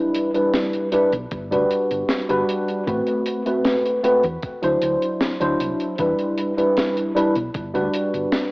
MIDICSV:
0, 0, Header, 1, 4, 480
1, 0, Start_track
1, 0, Tempo, 779221
1, 1770, Time_signature, 4, 2, 24, 8
1, 5246, End_track
2, 0, Start_track
2, 0, Title_t, "Tine electric piano"
2, 0, Program_c, 0, 4
2, 0, Note_on_c, 0, 55, 76
2, 0, Note_on_c, 0, 62, 69
2, 0, Note_on_c, 0, 64, 69
2, 0, Note_on_c, 0, 71, 82
2, 181, Note_off_c, 0, 55, 0
2, 182, Note_off_c, 0, 62, 0
2, 184, Note_off_c, 0, 64, 0
2, 185, Note_off_c, 0, 71, 0
2, 209, Note_on_c, 0, 55, 66
2, 212, Note_on_c, 0, 62, 60
2, 215, Note_on_c, 0, 64, 59
2, 219, Note_on_c, 0, 71, 72
2, 540, Note_off_c, 0, 55, 0
2, 541, Note_off_c, 0, 62, 0
2, 543, Note_off_c, 0, 64, 0
2, 545, Note_off_c, 0, 71, 0
2, 566, Note_on_c, 0, 55, 76
2, 569, Note_on_c, 0, 62, 72
2, 573, Note_on_c, 0, 64, 73
2, 575, Note_on_c, 0, 71, 85
2, 684, Note_off_c, 0, 55, 0
2, 685, Note_off_c, 0, 62, 0
2, 687, Note_off_c, 0, 64, 0
2, 688, Note_off_c, 0, 71, 0
2, 930, Note_on_c, 0, 55, 81
2, 933, Note_on_c, 0, 62, 73
2, 937, Note_on_c, 0, 66, 73
2, 940, Note_on_c, 0, 71, 86
2, 1382, Note_off_c, 0, 55, 0
2, 1383, Note_off_c, 0, 62, 0
2, 1386, Note_off_c, 0, 66, 0
2, 1387, Note_off_c, 0, 71, 0
2, 1411, Note_on_c, 0, 55, 86
2, 1414, Note_on_c, 0, 62, 76
2, 1417, Note_on_c, 0, 66, 79
2, 1421, Note_on_c, 0, 71, 93
2, 1741, Note_off_c, 0, 55, 0
2, 1742, Note_off_c, 0, 62, 0
2, 1744, Note_off_c, 0, 66, 0
2, 1746, Note_off_c, 0, 71, 0
2, 1765, Note_on_c, 0, 57, 70
2, 1767, Note_on_c, 0, 60, 69
2, 1771, Note_on_c, 0, 66, 68
2, 1773, Note_on_c, 0, 71, 81
2, 2101, Note_off_c, 0, 57, 0
2, 2102, Note_off_c, 0, 60, 0
2, 2104, Note_off_c, 0, 66, 0
2, 2105, Note_off_c, 0, 71, 0
2, 2127, Note_on_c, 0, 57, 68
2, 2132, Note_on_c, 0, 60, 64
2, 2135, Note_on_c, 0, 66, 62
2, 2137, Note_on_c, 0, 71, 73
2, 2459, Note_off_c, 0, 57, 0
2, 2461, Note_off_c, 0, 60, 0
2, 2463, Note_off_c, 0, 66, 0
2, 2464, Note_off_c, 0, 71, 0
2, 2484, Note_on_c, 0, 57, 79
2, 2488, Note_on_c, 0, 60, 75
2, 2490, Note_on_c, 0, 66, 73
2, 2493, Note_on_c, 0, 71, 86
2, 2603, Note_off_c, 0, 57, 0
2, 2605, Note_off_c, 0, 60, 0
2, 2606, Note_off_c, 0, 66, 0
2, 2607, Note_off_c, 0, 71, 0
2, 2847, Note_on_c, 0, 54, 77
2, 2850, Note_on_c, 0, 62, 71
2, 2853, Note_on_c, 0, 64, 72
2, 2857, Note_on_c, 0, 72, 88
2, 3300, Note_off_c, 0, 54, 0
2, 3302, Note_off_c, 0, 62, 0
2, 3303, Note_off_c, 0, 64, 0
2, 3306, Note_off_c, 0, 72, 0
2, 3327, Note_on_c, 0, 54, 88
2, 3330, Note_on_c, 0, 62, 78
2, 3334, Note_on_c, 0, 64, 77
2, 3336, Note_on_c, 0, 72, 93
2, 3659, Note_off_c, 0, 54, 0
2, 3660, Note_off_c, 0, 62, 0
2, 3662, Note_off_c, 0, 64, 0
2, 3663, Note_off_c, 0, 72, 0
2, 3686, Note_on_c, 0, 55, 74
2, 3690, Note_on_c, 0, 62, 68
2, 3693, Note_on_c, 0, 64, 69
2, 3696, Note_on_c, 0, 71, 83
2, 4022, Note_off_c, 0, 55, 0
2, 4024, Note_off_c, 0, 62, 0
2, 4025, Note_off_c, 0, 64, 0
2, 4026, Note_off_c, 0, 71, 0
2, 4046, Note_on_c, 0, 55, 66
2, 4049, Note_on_c, 0, 62, 64
2, 4051, Note_on_c, 0, 64, 65
2, 4055, Note_on_c, 0, 71, 74
2, 4378, Note_off_c, 0, 55, 0
2, 4380, Note_off_c, 0, 62, 0
2, 4381, Note_off_c, 0, 64, 0
2, 4383, Note_off_c, 0, 71, 0
2, 4403, Note_on_c, 0, 55, 79
2, 4405, Note_on_c, 0, 62, 74
2, 4410, Note_on_c, 0, 64, 72
2, 4413, Note_on_c, 0, 71, 89
2, 4522, Note_off_c, 0, 55, 0
2, 4523, Note_off_c, 0, 62, 0
2, 4526, Note_off_c, 0, 64, 0
2, 4527, Note_off_c, 0, 71, 0
2, 4768, Note_on_c, 0, 55, 78
2, 4769, Note_on_c, 0, 62, 77
2, 4772, Note_on_c, 0, 66, 73
2, 4775, Note_on_c, 0, 71, 89
2, 5221, Note_off_c, 0, 55, 0
2, 5222, Note_off_c, 0, 62, 0
2, 5223, Note_off_c, 0, 66, 0
2, 5225, Note_off_c, 0, 71, 0
2, 5246, End_track
3, 0, Start_track
3, 0, Title_t, "Fingered electric bass"
3, 0, Program_c, 1, 33
3, 694, Note_on_c, 1, 35, 98
3, 766, Note_off_c, 1, 35, 0
3, 811, Note_on_c, 1, 31, 87
3, 936, Note_on_c, 1, 38, 82
3, 946, Note_off_c, 1, 31, 0
3, 1007, Note_off_c, 1, 38, 0
3, 1175, Note_on_c, 1, 31, 81
3, 1247, Note_off_c, 1, 31, 0
3, 1417, Note_on_c, 1, 31, 90
3, 1487, Note_off_c, 1, 31, 0
3, 1771, Note_on_c, 1, 33, 92
3, 1847, Note_off_c, 1, 33, 0
3, 2613, Note_on_c, 1, 40, 98
3, 2686, Note_off_c, 1, 40, 0
3, 2855, Note_on_c, 1, 38, 75
3, 2927, Note_off_c, 1, 38, 0
3, 2972, Note_on_c, 1, 38, 86
3, 3048, Note_off_c, 1, 38, 0
3, 3335, Note_on_c, 1, 38, 86
3, 3407, Note_off_c, 1, 38, 0
3, 3453, Note_on_c, 1, 36, 89
3, 3528, Note_off_c, 1, 36, 0
3, 3690, Note_on_c, 1, 40, 95
3, 3766, Note_off_c, 1, 40, 0
3, 4535, Note_on_c, 1, 35, 94
3, 4607, Note_off_c, 1, 35, 0
3, 4651, Note_on_c, 1, 31, 88
3, 4772, Note_on_c, 1, 38, 82
3, 4782, Note_off_c, 1, 31, 0
3, 4845, Note_off_c, 1, 38, 0
3, 5013, Note_on_c, 1, 31, 83
3, 5086, Note_off_c, 1, 31, 0
3, 5246, End_track
4, 0, Start_track
4, 0, Title_t, "Drums"
4, 90, Note_on_c, 9, 42, 98
4, 151, Note_off_c, 9, 42, 0
4, 213, Note_on_c, 9, 42, 53
4, 274, Note_off_c, 9, 42, 0
4, 331, Note_on_c, 9, 38, 106
4, 331, Note_on_c, 9, 42, 74
4, 392, Note_off_c, 9, 38, 0
4, 393, Note_off_c, 9, 42, 0
4, 452, Note_on_c, 9, 42, 48
4, 513, Note_off_c, 9, 42, 0
4, 567, Note_on_c, 9, 42, 88
4, 628, Note_off_c, 9, 42, 0
4, 692, Note_on_c, 9, 42, 55
4, 754, Note_off_c, 9, 42, 0
4, 808, Note_on_c, 9, 42, 66
4, 811, Note_on_c, 9, 36, 115
4, 870, Note_off_c, 9, 42, 0
4, 873, Note_off_c, 9, 36, 0
4, 937, Note_on_c, 9, 42, 54
4, 999, Note_off_c, 9, 42, 0
4, 1051, Note_on_c, 9, 42, 86
4, 1112, Note_off_c, 9, 42, 0
4, 1175, Note_on_c, 9, 42, 55
4, 1236, Note_off_c, 9, 42, 0
4, 1286, Note_on_c, 9, 38, 108
4, 1288, Note_on_c, 9, 42, 70
4, 1347, Note_off_c, 9, 38, 0
4, 1350, Note_off_c, 9, 42, 0
4, 1412, Note_on_c, 9, 42, 51
4, 1474, Note_off_c, 9, 42, 0
4, 1534, Note_on_c, 9, 42, 96
4, 1595, Note_off_c, 9, 42, 0
4, 1653, Note_on_c, 9, 42, 51
4, 1714, Note_off_c, 9, 42, 0
4, 1770, Note_on_c, 9, 36, 115
4, 1771, Note_on_c, 9, 42, 76
4, 1832, Note_off_c, 9, 36, 0
4, 1833, Note_off_c, 9, 42, 0
4, 1889, Note_on_c, 9, 42, 52
4, 1951, Note_off_c, 9, 42, 0
4, 2006, Note_on_c, 9, 42, 97
4, 2068, Note_off_c, 9, 42, 0
4, 2131, Note_on_c, 9, 42, 48
4, 2192, Note_off_c, 9, 42, 0
4, 2245, Note_on_c, 9, 42, 73
4, 2248, Note_on_c, 9, 38, 113
4, 2307, Note_off_c, 9, 42, 0
4, 2309, Note_off_c, 9, 38, 0
4, 2375, Note_on_c, 9, 42, 50
4, 2436, Note_off_c, 9, 42, 0
4, 2488, Note_on_c, 9, 42, 89
4, 2550, Note_off_c, 9, 42, 0
4, 2608, Note_on_c, 9, 42, 50
4, 2670, Note_off_c, 9, 42, 0
4, 2726, Note_on_c, 9, 42, 69
4, 2730, Note_on_c, 9, 36, 116
4, 2788, Note_off_c, 9, 42, 0
4, 2792, Note_off_c, 9, 36, 0
4, 2851, Note_on_c, 9, 42, 50
4, 2912, Note_off_c, 9, 42, 0
4, 2967, Note_on_c, 9, 42, 105
4, 3029, Note_off_c, 9, 42, 0
4, 3093, Note_on_c, 9, 42, 58
4, 3155, Note_off_c, 9, 42, 0
4, 3207, Note_on_c, 9, 38, 109
4, 3209, Note_on_c, 9, 42, 75
4, 3269, Note_off_c, 9, 38, 0
4, 3271, Note_off_c, 9, 42, 0
4, 3331, Note_on_c, 9, 42, 57
4, 3393, Note_off_c, 9, 42, 0
4, 3451, Note_on_c, 9, 42, 91
4, 3513, Note_off_c, 9, 42, 0
4, 3572, Note_on_c, 9, 42, 55
4, 3634, Note_off_c, 9, 42, 0
4, 3685, Note_on_c, 9, 42, 77
4, 3690, Note_on_c, 9, 36, 123
4, 3747, Note_off_c, 9, 42, 0
4, 3751, Note_off_c, 9, 36, 0
4, 3811, Note_on_c, 9, 42, 51
4, 3872, Note_off_c, 9, 42, 0
4, 3928, Note_on_c, 9, 42, 89
4, 3989, Note_off_c, 9, 42, 0
4, 4055, Note_on_c, 9, 42, 48
4, 4116, Note_off_c, 9, 42, 0
4, 4169, Note_on_c, 9, 42, 80
4, 4174, Note_on_c, 9, 38, 122
4, 4231, Note_off_c, 9, 42, 0
4, 4236, Note_off_c, 9, 38, 0
4, 4294, Note_on_c, 9, 42, 51
4, 4355, Note_off_c, 9, 42, 0
4, 4415, Note_on_c, 9, 42, 89
4, 4477, Note_off_c, 9, 42, 0
4, 4531, Note_on_c, 9, 42, 54
4, 4593, Note_off_c, 9, 42, 0
4, 4647, Note_on_c, 9, 42, 75
4, 4650, Note_on_c, 9, 36, 120
4, 4709, Note_off_c, 9, 42, 0
4, 4712, Note_off_c, 9, 36, 0
4, 4773, Note_on_c, 9, 42, 54
4, 4835, Note_off_c, 9, 42, 0
4, 4889, Note_on_c, 9, 42, 101
4, 4951, Note_off_c, 9, 42, 0
4, 5016, Note_on_c, 9, 42, 50
4, 5078, Note_off_c, 9, 42, 0
4, 5127, Note_on_c, 9, 42, 71
4, 5128, Note_on_c, 9, 38, 112
4, 5188, Note_off_c, 9, 42, 0
4, 5190, Note_off_c, 9, 38, 0
4, 5246, End_track
0, 0, End_of_file